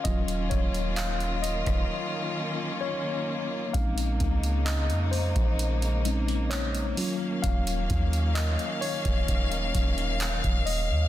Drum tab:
HH |xxxxxxxx--------|xxxxxxoxxxxxxxo-|xxxxxxoxxxxxxxo-|
CP |----x-----------|----x-------x---|----x-------x---|
SD |-------r--------|----------------|----------------|
BD |o-o----o--------|o-o----o--------|o-o----oo-o--o--|